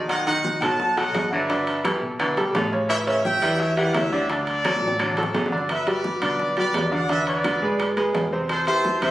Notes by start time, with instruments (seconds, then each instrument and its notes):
Already playing: fingered electric bass B1, grand piano D#3 D#4 D#5
0.08 baritone saxophone D#3, trumpet section D#5 F#5, high bongo, high conga, high timbale, claves
0.26 grand piano D#3 D#4 D#5, trumpet section D#5 F#5, high conga, high timbale
0.44 high bongo, high conga, low timbale
0.61 fingered electric bass B2, baritone saxophone F#3, grand piano F#3 F#4 A4, trumpet section F#5 A5, high bongo, high conga, low conga, high timbale, claves
0.80 high bongo, high conga, low conga
0.97 grand piano F#3 F#4 A4, baritone saxophone F#3, trumpet section D#5 F#5, high bongo, high timbale
1.15 fingered electric bass G2, high bongo, low bongo, high conga, high timbale, low timbale, claves
1.32 grand piano D3 D4 D5, baritone saxophone F#3, trumpet section B4 E5, high bongo
1.50 grand piano D3 D4 D5, high bongo, high conga, high timbale
1.67 high conga, high timbale
1.84 baritone saxophone E3, grand piano G3 G4 A4, high bongo, high conga, high timbale, low timbale, claves
2.02 fingered electric bass B2, high bongo, high conga
2.19 grand piano D3 D4 D5, baritone saxophone E3, high bongo, high conga, high timbale, claves
2.37 grand piano G3 G4 A4, high bongo, high conga, high timbale
2.55 fingered electric bass A2, baritone saxophone D3, high bongo, low bongo, high conga, high timbale, low timbale
2.72 grand piano C#3 C#4 C#5, high bongo
2.89 baritone saxophone E3, trumpet section C#5 E5, high bongo, high conga, high timbale, claves
3.07 grand piano C#3 C#4 C#5, trumpet section C#5 E5, high conga, high timbale
3.24 trumpet section E5 G5, high bongo, high conga, low timbale
3.42 fingered electric bass E2, grand piano E3 E4 G4, baritone saxophone G3, high bongo, high conga, low conga, high timbale, claves
3.59 trumpet section C#5 E5, high bongo, high conga
3.77 grand piano E3 E4 G4, baritone saxophone G3, trumpet section D5 F#5, high bongo, high conga, high timbale
3.94 fingered electric bass D2, trumpet section C#5 E5, high bongo, low bongo, high conga, high timbale, low timbale, claves
4.12 grand piano D3 D4 D5, baritone saxophone G3, high bongo, high conga
4.29 grand piano D3 D4 D5, trumpet section A4 D5, high bongo, high conga, high timbale
4.47 high conga, high timbale
4.65 baritone saxophone F#3, grand piano F#3 F#4 A4, high bongo, high conga, high timbale, low timbale, claves
4.76 high bongo
4.82 fingered electric bass A1, high conga
4.88 high bongo
4.99 grand piano D3 D4 D5, baritone saxophone F#3, high bongo, high conga, high timbale, claves
5.11 low bongo
5.17 grand piano F#3 F#4 A4, high conga, high timbale
5.23 low bongo
5.34 fingered electric bass G1, baritone saxophone D3, low bongo, high conga, high timbale, low timbale
5.46 low bongo
5.52 grand piano D3 D4 D5, high conga
5.58 low bongo
5.69 trumpet section B4 E5, high bongo, high conga, high timbale, claves
5.87 grand piano G3 F#4 G4, trumpet section B4 D5, high conga, high timbale
6.04 high bongo, high conga, low timbale
6.22 fingered electric bass B1, grand piano D3 D4 D5, trumpet section B4 D5, high bongo, high conga, low conga, high timbale, claves
6.40 high bongo, high conga
6.57 grand piano G3 F#4 G4, trumpet section B4 D5, high bongo, high conga, high timbale
6.74 fingered electric bass E2, high bongo, low bongo, high conga, high timbale, low timbale, claves
6.92 grand piano D3 D4 D5, trumpet section D5 F#5, high bongo
7.09 grand piano D3 D4 D5, trumpet section B4 E5, high bongo, high conga, high timbale
7.27 trumpet section B4 D5, high conga, high timbale
7.44 grand piano D3 D4 D5, high bongo, high conga, high timbale, low timbale, claves
7.62 fingered electric bass G#2, grand piano G#3 G#4 B4, high bongo, high conga
7.79 high bongo, high conga, high timbale, claves
7.97 grand piano G#3 G#4 B4, high bongo, high conga, high timbale
8.15 fingered electric bass E2, high bongo, low bongo, high conga, high timbale, low timbale
8.32 grand piano C3 C4 C5, high bongo
8.49 trumpet section A4 C5, high bongo, high conga, high timbale, claves
8.67 grand piano E3 E4 G4, trumpet section A4 C5, high conga, high timbale
8.85 high bongo, high conga, low timbale
9.02 fingered electric bass E2, grand piano C3 C4 C5, trumpet section C5 E5, high bongo, high conga, low conga, high timbale, claves